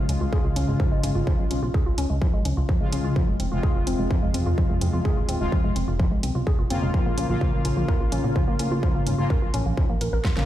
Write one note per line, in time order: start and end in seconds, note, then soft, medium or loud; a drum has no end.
0.00 1.60 C#3 medium
0.00 1.60 G#3 medium
0.00 1.60 F4 medium
0.09 0.17 C#2 loud
0.09 0.18 C#4 medium
0.09 closed hi-hat loud
0.21 0.29 C#2 medium
0.21 0.26 F4 medium
0.33 0.42 G#4 loud
0.33 kick loud
0.45 0.52 C#2 medium
0.45 0.50 F4 medium
0.56 0.64 C#2 loud
0.56 0.65 C#4 loud
0.56 closed hi-hat loud
0.68 0.76 G#1 medium
0.68 0.74 G#3 medium
0.80 0.89 F3 loud
0.80 kick loud
0.92 0.99 G#1 medium
0.92 1.01 G#3 loud
1.03 1.11 G#1 medium
1.03 1.13 C#4 medium
1.03 closed hi-hat loud
1.15 1.23 G#1 medium
1.15 1.27 F4 medium
1.27 1.39 F3 loud
1.27 kick loud
1.39 1.47 B1 medium
1.39 1.44 G#3 medium
1.51 1.58 B1 loud
1.51 1.60 C#4 medium
1.51 closed hi-hat loud
1.63 1.70 B1 medium
1.63 1.68 F4 medium
1.74 1.83 G#4 loud
1.74 kick loud
1.86 1.94 C#2 medium
1.86 1.92 F4 medium
1.98 2.06 C#2 loud
1.98 2.07 C#4 loud
1.98 closed hi-hat loud
2.10 2.35 C#2 medium
2.10 2.15 G#3 medium
2.22 2.31 F3 loud
2.22 kick loud
2.34 2.41 G#1 medium
2.34 2.42 G#3 medium
2.45 2.53 C#2 loud
2.45 2.54 C#4 medium
2.45 closed hi-hat loud
2.57 2.65 C#2 medium
2.57 2.68 F4 medium
2.69 2.80 F3 loud
2.69 kick loud
2.81 2.88 C#2 medium
2.81 3.15 C#3 medium
2.81 2.86 G#3 medium
2.81 3.15 G#3 medium
2.81 3.15 F4 medium
2.92 3.00 C#2 medium
2.92 3.02 C#4 medium
2.92 closed hi-hat loud
3.04 3.12 C#2 medium
3.04 3.10 F4 medium
3.16 3.28 F3 loud
3.16 kick loud
3.28 3.36 F1 medium
3.28 3.33 G#3 medium
3.40 3.48 F1 loud
3.40 3.49 C4 medium
3.40 closed hi-hat loud
3.52 3.59 F1 medium
3.52 5.38 C3 medium
3.52 5.38 G#3 medium
3.52 5.38 F4 medium
3.52 3.57 F4 medium
3.63 3.72 G#4 loud
3.63 kick loud
3.75 3.83 F1 medium
3.75 3.81 F4 medium
3.87 3.95 F1 loud
3.87 3.96 C4 loud
3.87 closed hi-hat loud
3.99 4.07 F1 medium
3.99 4.04 G#3 medium
4.11 4.20 F3 loud
4.11 kick loud
4.23 4.30 F1 medium
4.23 4.31 G#3 loud
4.34 4.42 F1 medium
4.34 4.43 C4 medium
4.34 closed hi-hat loud
4.46 4.54 F2 medium
4.46 4.57 F4 medium
4.58 4.69 F3 loud
4.58 kick loud
4.70 4.77 F2 medium
4.70 4.75 G#3 medium
4.81 4.89 F2 medium
4.81 4.90 C4 medium
4.81 closed hi-hat loud
4.93 5.01 F2 medium
4.93 4.99 F4 medium
5.05 5.14 G#4 loud
5.05 kick loud
5.17 5.25 D#1 medium
5.17 5.22 F4 medium
5.29 5.36 D#1 loud
5.29 5.38 C4 loud
5.29 closed hi-hat medium
5.41 5.48 D#1 medium
5.41 5.54 C3 medium
5.41 5.46 G#3 medium
5.41 5.54 G#3 medium
5.41 5.54 F4 loud
5.52 5.61 F3 loud
5.52 kick loud
5.64 5.72 F1 medium
5.64 5.73 G#3 loud
5.76 5.84 F1 loud
5.76 5.85 C4 medium
5.76 closed hi-hat medium
5.88 6.13 F1 medium
5.88 5.99 F4 medium
5.99 6.11 F3 loud
5.99 kick loud
6.11 6.19 C2 medium
6.11 6.17 G#3 medium
6.23 6.31 C2 medium
6.23 6.32 C4 medium
6.23 closed hi-hat medium
6.35 6.43 C2 medium
6.35 6.40 F4 medium
6.47 6.56 G#4 loud
6.47 kick loud
6.59 6.66 F1 medium
6.59 6.64 F4 medium
6.70 6.78 F1 medium
6.70 7.27 C#3 medium
6.70 7.27 A#3 medium
6.70 6.79 C4 loud
6.70 7.27 F4 loud
6.70 closed hi-hat loud
6.82 6.90 F1 medium
6.82 6.88 G#3 medium
6.94 7.03 F3 loud
6.94 kick loud
7.06 7.14 A#1 medium
7.06 7.15 A#3 loud
7.18 7.25 A#1 medium
7.18 7.27 C#4 medium
7.18 closed hi-hat loud
7.30 7.37 A#1 medium
7.30 9.16 C#3 medium
7.30 9.16 A#3 medium
7.30 9.16 F4 medium
7.30 7.41 F4 medium
7.41 7.53 F3 loud
7.41 kick loud
7.53 7.61 A#1 medium
7.53 7.59 A#3 medium
7.65 7.73 A#1 loud
7.65 7.74 C#4 medium
7.65 closed hi-hat medium
7.77 7.84 A#1 medium
7.77 7.82 F4 medium
7.88 7.98 A#4 loud
7.88 kick loud
8.00 8.08 A#1 medium
8.00 8.06 F4 medium
8.12 8.20 A#1 loud
8.12 8.21 C#4 loud
8.12 closed hi-hat loud
8.24 8.32 A#2 medium
8.24 8.29 A#3 medium
8.36 8.45 F3 loud
8.36 kick loud
8.48 8.55 A#2 medium
8.48 8.57 A#3 loud
8.59 8.67 A#2 loud
8.59 8.68 C#4 medium
8.59 closed hi-hat loud
8.71 8.79 A#2 medium
8.71 8.82 F4 medium
8.83 8.94 F3 loud
8.83 kick loud
8.95 9.03 G#1 medium
8.95 9.00 A#3 medium
9.07 9.14 G#1 loud
9.07 9.16 C#4 medium
9.07 closed hi-hat medium
9.18 9.26 G#1 medium
9.18 9.32 C#3 medium
9.18 9.32 A#3 medium
9.18 9.24 F4 medium
9.18 9.32 F4 loud
9.30 9.39 A#4 loud
9.30 kick loud
9.42 9.50 A#1 medium
9.42 9.48 F4 medium
9.54 9.62 A#1 loud
9.54 9.63 C#4 loud
9.54 closed hi-hat loud
9.66 9.73 A#1 medium
9.66 9.71 A#3 medium
9.77 9.87 F3 loud
9.77 kick loud
9.89 9.97 A#1 medium
9.89 9.98 A#3 loud
10.01 10.09 A#1 loud
10.01 10.12 A#4 medium
10.01 closed hi-hat loud
10.13 10.21 A#1 medium
10.13 10.22 A#4 loud
10.25 10.34 F4 loud
10.25 kick loud
10.25 snare medium
10.37 10.44 A#1 medium
10.37 10.45 C#3 medium
10.37 10.45 A#3 medium
10.37 10.42 C#4 medium
10.37 10.45 F4 medium
10.37 snare medium